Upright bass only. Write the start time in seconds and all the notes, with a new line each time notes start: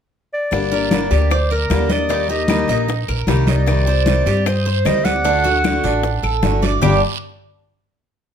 0.52 G1
1.11 D2
1.70 D#2
2.68 A#1
3.08 A#1
3.28 C2
4.26 G2
4.85 D2
5.84 A1
6.23 A1
6.43 G1
6.82 G1